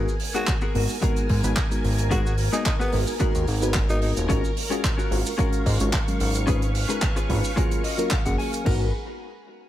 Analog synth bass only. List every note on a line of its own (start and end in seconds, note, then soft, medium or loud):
0.75 0.87 G#1 medium
1.30 1.42 G#2 medium
1.44 1.55 G#1 loud
1.84 2.49 G#1 medium
2.93 3.05 G#1 medium
3.35 3.45 D#2 medium
3.48 4.13 G#1 medium
4.17 4.27 D#1 loud
4.30 4.42 G#1 loud
5.11 5.23 G#1 medium
5.66 5.78 G#2 medium
5.80 5.91 G#1 medium
6.20 6.85 G#1 medium
7.30 7.42 G#1 medium
8.26 8.36 F#1 loud
8.66 8.91 G#1 loud